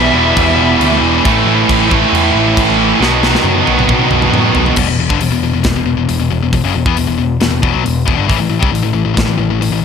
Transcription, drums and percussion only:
0.37 kick, crash
0.81 crash
1.25 kick, crash
1.69 kick, crash
1.91 kick
2.15 crash
2.57 kick, crash
3.03 snare
3.23 snare
3.35 snare
3.45 high tom
3.67 high tom
3.79 mid tom
3.89 kick, mid tom
4.11 mid tom
4.22 mid tom
4.34 mid tom
4.55 floor tom
4.66 floor tom
4.76 kick, crash
5.10 kick
5.21 open hi-hat
5.64 kick, snare, open hi-hat
6.09 open hi-hat
6.53 kick, open hi-hat
6.86 kick
6.97 open hi-hat
7.41 snare, open hi-hat
7.63 kick
7.86 open hi-hat
8.08 kick
8.30 kick, open hi-hat
8.63 kick
8.75 open hi-hat
9.17 kick, snare, open hi-hat
9.62 open hi-hat

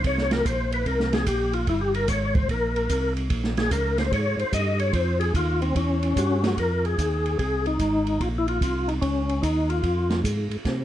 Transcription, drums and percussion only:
0.04 kick, ride
0.18 snare
0.31 snare, ride
0.45 kick, hi-hat pedal, ride
0.72 ride
0.86 kick, ride
1.00 snare
1.13 snare, ride
1.26 kick, hi-hat pedal, ride
1.53 ride
1.67 kick, ride
1.94 ride
2.08 kick, hi-hat pedal, ride
2.35 kick, ride
2.49 kick, ride
2.76 ride
2.89 kick, hi-hat pedal, ride
3.17 ride
3.30 kick, ride
3.44 snare
3.57 snare, ride
3.71 kick, hi-hat pedal, ride
3.98 snare, ride
4.12 kick, ride
4.39 ride
4.53 kick, hi-hat pedal, ride
4.79 ride
4.93 kick, ride
5.20 ride
5.34 kick, hi-hat pedal, ride
5.62 ride
5.75 kick, ride
6.03 ride
6.16 kick, hi-hat pedal, ride
6.44 snare, ride
6.57 kick, ride
6.85 ride
6.98 kick, hi-hat pedal, ride
7.26 ride
7.39 kick, ride
7.66 ride
7.79 kick, hi-hat pedal, ride
8.07 ride
8.20 kick, ride
8.48 ride
8.61 kick, hi-hat pedal, ride
8.89 ride
9.02 kick, ride
9.29 ride
9.43 kick, hi-hat pedal, ride
9.70 ride
9.83 kick, ride
10.10 snare, ride
10.24 kick, hi-hat pedal, ride
10.51 ride
10.65 kick, snare, ride

